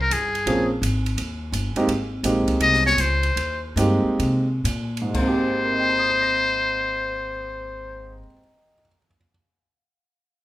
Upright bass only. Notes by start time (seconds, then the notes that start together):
0.11 G1
0.46 A#1
0.82 G#1
1.17 D#2
1.52 G1
1.75 muted upright bass stroke
1.88 G#1
2.23 A#1
2.48 muted upright bass stroke
2.60 C2
2.97 C#2
3.36 D#2
3.76 G2
4.04 muted upright bass stroke
4.19 C3
4.64 A#2
5.14 G#1